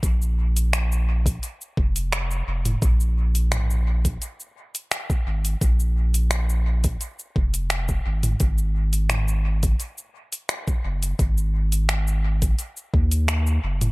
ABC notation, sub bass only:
X:1
M:4/4
L:1/8
Q:1/4=86
K:Abmix
V:1 name="Sub bass" clef=bass
B,,,4 z F,,,2 F,,, | B,,,4 z3 A,,, | B,,,4 z F,,,2 A,,, | A,,,4 z3 G,,, |
A,,,4 z E,,2 G,,, |]